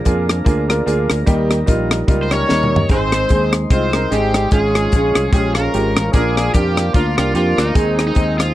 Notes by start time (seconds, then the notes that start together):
Already playing: A#2 F3 G#3 A#3 D4 G#4 D5 F5 A#5
0.05 F2 A#3 D4 F4 G#4, kick, closed hi-hat
0.29 cross-stick, closed hi-hat
0.44 D2 A#3 D4 F4 G#4, kick, closed hi-hat
0.67 A#3 D4 F4 A#4, cross-stick, closed hi-hat
0.86 D2 A#3 D4 F4 G#4, closed hi-hat
1.10 D2, cross-stick, closed hi-hat
1.26 D#2 D#3 G3 A#3 D#4 G4 A#4 D#5, kick, closed hi-hat
1.51 cross-stick, closed hi-hat
1.66 A#1 G3 A#3 D#4 F4, kick, closed hi-hat
1.91 cross-stick, closed hi-hat
2.08 C#2 G3 A#3 D#4 F4, kick, closed hi-hat
2.23 C5
2.31 G3 A#3 C#4 D#4 G4 A#4 C#5, cross-stick, closed hi-hat
2.48 D#2 G3 A#3 D#4 A#4, snare
2.63 mid tom
2.76 floor tom
2.88 G#1 G#2 G#3 C4 D#4 G#4 C5 C6, kick, closed hi-hat
3.12 cross-stick, closed hi-hat
3.29 D#2 G#3 C4 D#4 G#4, kick, closed hi-hat
3.53 cross-stick, closed hi-hat
3.70 C2 G#3 C4 D#4 F4 C5, kick, closed hi-hat
3.93 G#3 C4 D#4 A#4, cross-stick, closed hi-hat
4.10 G#1 G3 G#3 C4 D#4 G4 G#4, closed hi-hat
4.34 cross-stick, closed hi-hat
4.51 G#1 G#2 F3 G#3 C#4 F4 G#4 C#5 F5 C#6, kick, closed hi-hat
4.75 cross-stick, closed hi-hat
4.92 A#1 G#3 C#4 F4 G#4, kick, closed hi-hat
5.15 C2, cross-stick, closed hi-hat
5.31 A#1 G#3 C#4 F4 G4 G#4, kick, closed hi-hat
5.54 G#3 A#3 C#4 F4 G#4 A#4, cross-stick, closed hi-hat
5.74 G#1 G#3 C#4 F4 G4, closed hi-hat
5.97 A1, cross-stick, closed hi-hat
6.12 A#1 A#2 G#3 A#3 D4 F4 G#4 A#4 D5 F5 D6, kick, closed hi-hat
6.37 G#4, cross-stick, closed hi-hat
6.53 F2 G3 A#3 D4 F4 G4, kick, closed hi-hat
6.77 cross-stick, closed hi-hat
6.93 D2 F3 A#3 D4 F4 A#4, kick, closed hi-hat
7.17 C2 A#3 D4 F4 G4, cross-stick, closed hi-hat
7.33 F2 F3 A#3 D4 F4 G4, closed hi-hat
7.37 D4
7.58 D2 D#4, cross-stick, closed hi-hat
7.74 D#2 D#3 G#3 C4 D#4 G#4 C5 D#5 G#5 D#6, kick, closed hi-hat
7.99 cross-stick, closed hi-hat
8.06 D#3 G#3 C4 D#4
8.15 D#2 G#3 C4 D#4 G#4, kick, closed hi-hat
8.39 F3 F4, cross-stick, closed hi-hat